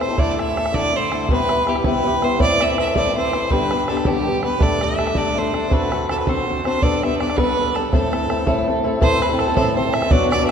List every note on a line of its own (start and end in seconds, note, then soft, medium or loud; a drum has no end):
0.01 0.09 C4 medium
0.01 0.09 E4 medium
0.01 0.07 A4 medium
0.01 0.20 C5 loud
0.01 bodhran medium
0.08 0.17 C4 soft
0.08 0.17 E4 medium
0.08 0.17 A4 medium
0.17 0.37 D3 medium
0.17 0.38 A3 medium
0.17 0.39 E4 medium
0.17 0.39 A4 medium
0.17 0.31 D5 loud
0.17 bodhran medium
0.31 0.40 D5 medium
0.38 0.54 D3 soft
0.38 0.55 A3 medium
0.38 0.57 E4 medium
0.38 0.57 A4 medium
0.38 0.76 E5 loud
0.38 bodhran medium
0.55 0.71 D3 medium
0.55 0.73 A3 medium
0.55 0.74 E4 medium
0.55 0.74 A4 medium
0.55 bodhran medium
0.66 bodhran medium
0.72 0.92 D3 medium
0.72 0.93 A3 medium
0.72 0.94 E4 medium
0.72 0.95 A4 medium
0.72 0.97 D5 loud
0.72 bodhran medium
0.84 bodhran soft
0.93 1.10 D3 medium
0.93 1.11 A3 medium
0.93 1.12 E4 medium
0.93 1.12 A4 medium
0.93 1.30 C5 medium
1.11 1.29 D3 medium
1.11 1.29 A3 medium
1.11 1.30 E4 medium
1.11 1.30 A4 medium
1.11 bodhran medium
1.29 1.50 C3 medium
1.29 1.48 G3 medium
1.29 1.50 B3 medium
1.29 1.50 E4 medium
1.29 1.51 G4 medium
1.29 1.71 B4 loud
1.29 bodhran medium
1.49 1.65 G3 medium
1.49 1.67 B3 medium
1.49 1.67 E4 medium
1.49 1.69 G4 medium
1.49 bodhran medium
1.66 1.84 G3 medium
1.66 1.84 B3 medium
1.66 1.85 E4 medium
1.66 1.85 G4 medium
1.66 bodhran medium
1.76 bodhran medium
1.84 2.05 C3 medium
1.84 2.03 G3 medium
1.84 2.04 B3 medium
1.84 2.05 E4 medium
1.84 2.06 G4 medium
1.84 2.25 B4 loud
1.84 bodhran medium
1.95 bodhran soft
2.04 2.20 G3 medium
2.04 2.22 B3 medium
2.04 2.22 E4 medium
2.04 2.23 G4 medium
2.22 2.38 G3 medium
2.22 2.39 B3 medium
2.22 2.39 E4 medium
2.22 2.40 G4 medium
2.22 2.40 C5 loud
2.22 bodhran medium
2.39 2.60 A2 medium
2.39 2.59 E3 medium
2.39 2.60 C4 medium
2.39 2.60 E4 medium
2.39 2.60 A4 medium
2.39 2.63 D5 loud
2.39 bodhran medium
2.60 2.77 E3 medium
2.60 2.78 C4 medium
2.60 2.79 E4 medium
2.60 2.79 A4 medium
2.60 2.78 E5 loud
2.60 bodhran medium
2.78 2.94 E3 medium
2.78 2.95 C4 medium
2.78 2.95 E4 medium
2.78 2.96 A4 medium
2.78 2.95 E5 medium
2.78 bodhran medium
2.87 bodhran medium
2.95 3.15 A2 medium
2.95 3.14 E3 medium
2.95 3.15 C4 medium
2.95 3.16 E4 medium
2.95 3.17 A4 medium
2.95 3.14 D5 loud
2.95 bodhran medium
3.06 bodhran soft
3.15 3.32 E3 medium
3.15 3.33 C4 medium
3.15 3.34 E4 medium
3.15 3.34 A4 medium
3.15 3.52 C5 loud
3.33 3.50 E3 medium
3.33 3.51 C4 medium
3.33 3.51 E4 medium
3.33 3.52 A4 medium
3.33 bodhran medium
3.50 3.71 G2 medium
3.50 3.71 D3 medium
3.50 3.70 G3 medium
3.50 3.71 B3 medium
3.50 3.72 D4 medium
3.50 3.72 G4 medium
3.50 3.90 B4 loud
3.50 bodhran medium
3.71 3.87 G3 soft
3.71 3.89 B3 medium
3.71 3.89 D4 medium
3.71 3.90 G4 medium
3.71 bodhran medium
3.88 4.06 G3 medium
3.88 4.06 B3 medium
3.88 4.06 D4 medium
3.88 4.07 G4 medium
3.88 4.08 A4 medium
3.88 bodhran medium
3.97 bodhran medium
4.05 4.26 G2 medium
4.05 4.26 D3 medium
4.05 4.24 G3 medium
4.05 4.25 B3 medium
4.05 4.27 D4 medium
4.05 4.44 G4 loud
4.05 4.27 G4 medium
4.05 bodhran medium
4.16 bodhran soft
4.25 4.42 G3 medium
4.25 4.43 B3 medium
4.25 4.44 D4 medium
4.25 4.44 G4 medium
4.43 4.58 G3 medium
4.43 4.59 B3 medium
4.43 4.59 D4 medium
4.43 4.61 G4 medium
4.43 4.64 B4 medium
4.43 bodhran medium
4.59 4.79 G3 medium
4.59 4.80 A3 medium
4.59 4.81 D4 medium
4.59 4.82 A4 medium
4.59 4.85 D5 loud
4.59 bodhran medium
4.80 4.95 G3 medium
4.80 4.97 A3 medium
4.80 4.97 D4 medium
4.80 4.99 A4 medium
4.80 5.19 E5 medium
4.80 bodhran medium
4.96 5.13 G3 medium
4.96 5.15 A3 medium
4.96 5.15 D4 medium
4.96 5.17 A4 medium
4.96 bodhran medium
5.07 bodhran medium
5.15 5.34 G3 medium
5.15 5.35 A3 medium
5.15 5.37 D4 medium
5.15 5.37 A4 medium
5.15 5.39 D5 loud
5.15 bodhran medium
5.26 bodhran soft
5.36 5.51 G3 soft
5.36 5.52 A3 medium
5.36 5.53 D4 medium
5.36 5.54 A4 medium
5.36 5.74 C5 medium
5.52 5.69 G3 medium
5.52 5.70 A3 medium
5.52 5.71 D4 medium
5.52 5.71 A4 medium
5.52 bodhran medium
5.69 5.89 D3 medium
5.69 5.91 C4 medium
5.69 5.91 F#4 medium
5.69 5.92 A4 medium
5.69 6.09 B4 loud
5.69 bodhran medium
5.90 6.08 D3 medium
5.90 6.09 C4 soft
5.90 6.09 F#4 medium
5.90 6.10 A4 medium
5.90 bodhran medium
6.09 6.26 D3 medium
6.09 6.27 C4 soft
6.09 6.27 F#4 medium
6.09 6.19 A4 medium
6.09 6.28 A4 medium
6.09 bodhran medium
6.18 6.30 B4 medium
6.18 bodhran medium
6.27 6.46 D3 medium
6.27 6.48 C4 medium
6.27 6.48 F#4 medium
6.27 6.48 A4 medium
6.27 6.65 C5 medium
6.27 bodhran medium
6.38 bodhran soft
6.47 6.64 D3 medium
6.47 6.65 C4 medium
6.47 6.65 F#4 medium
6.47 6.66 A4 medium
6.65 6.82 D3 medium
6.65 6.82 C4 medium
6.65 6.83 F#4 medium
6.65 6.83 A4 medium
6.65 6.84 C5 loud
6.65 bodhran medium
6.82 7.01 G3 medium
6.82 7.03 B3 medium
6.82 7.02 D4 medium
6.82 7.03 A4 medium
6.82 6.97 D5 loud
6.82 bodhran medium
6.97 7.04 D5 medium
7.02 7.18 G3 medium
7.02 7.20 B3 medium
7.02 7.19 D4 medium
7.02 7.21 A4 medium
7.02 7.19 E5 medium
7.02 bodhran medium
7.19 7.35 G3 medium
7.19 7.37 B3 medium
7.19 7.36 D4 medium
7.19 7.38 A4 medium
7.19 7.39 D5 medium
7.19 bodhran medium
7.30 bodhran medium
7.37 7.56 G3 medium
7.37 7.58 B3 medium
7.37 7.57 D4 medium
7.37 7.58 A4 medium
7.37 7.76 B4 loud
7.37 bodhran medium
7.49 bodhran soft
7.57 7.74 G3 medium
7.57 7.75 B3 medium
7.57 7.75 D4 medium
7.57 7.76 A4 medium
7.75 7.92 G3 medium
7.75 7.93 B3 medium
7.75 7.92 D4 medium
7.75 7.92 A4 medium
7.75 7.93 A4 medium
7.75 bodhran medium
7.92 8.12 A2 medium
7.92 8.10 A3 medium
7.92 8.11 C4 medium
7.92 8.12 E4 medium
7.92 8.63 A4 medium
7.92 8.13 A4 medium
7.92 bodhran medium
8.11 8.28 A3 medium
8.11 8.29 C4 medium
8.11 8.30 E4 medium
8.11 8.30 A4 medium
8.11 bodhran medium
8.29 8.45 A3 medium
8.29 8.46 C4 medium
8.29 8.47 E4 medium
8.29 8.48 A4 medium
8.29 bodhran medium
8.46 8.67 A2 medium
8.46 8.66 A3 medium
8.46 8.67 C4 medium
8.46 8.68 E4 medium
8.46 8.68 A4 medium
8.46 bodhran medium
8.57 bodhran soft
8.67 8.83 A3 medium
8.67 8.83 C4 medium
8.67 8.84 E4 medium
8.67 8.86 A4 medium
8.84 9.00 A3 medium
8.84 9.00 C4 medium
8.84 9.01 E4 medium
8.84 9.01 A4 medium
9.00 9.21 A2 medium
9.00 9.19 E3 medium
9.00 9.20 C4 medium
9.00 9.21 E4 medium
9.00 9.22 A4 loud
9.00 9.24 C5 loud
9.00 bodhran medium
9.20 9.30 E3 medium
9.20 9.30 C4 medium
9.20 9.30 E4 medium
9.20 9.28 A4 medium
9.20 9.41 B4 loud
9.20 bodhran medium
9.29 9.49 C4 medium
9.29 9.47 E4 medium
9.29 9.46 A4 medium
9.39 9.54 A4 loud
9.39 bodhran medium
9.47 9.55 C4 soft
9.47 9.56 E4 soft
9.47 9.56 A4 medium
9.55 9.76 A2 medium
9.55 9.75 E3 medium
9.55 9.76 C4 medium
9.55 9.76 E4 medium
9.55 9.74 A4 loud
9.55 9.77 A4 medium
9.55 bodhran medium
9.75 9.85 E3 medium
9.75 9.85 C4 medium
9.75 9.85 E4 medium
9.75 9.94 C5 medium
9.75 bodhran soft
9.79 9.84 A4 medium
9.85 10.04 C4 soft
9.85 10.03 E4 soft
9.85 10.01 A4 medium
9.93 10.13 E5 loud
9.93 bodhran medium
10.02 10.11 C4 soft
10.02 10.12 E4 soft
10.02 10.11 A4 medium
10.02 bodhran medium
10.11 10.31 B2 medium
10.11 10.30 F#3 medium
10.11 10.31 B3 medium
10.11 10.32 D4 loud
10.11 10.32 F#4 medium
10.11 10.29 D5 loud
10.11 bodhran medium
10.30 10.40 F#3 medium
10.30 10.41 B3 medium
10.30 10.41 D4 medium
10.30 10.47 D5 loud
10.30 bodhran medium
10.34 10.39 F#4 medium
10.40 10.51 B3 medium
10.40 10.51 D4 medium
10.40 10.51 F#4 medium
10.47 10.51 E5 loud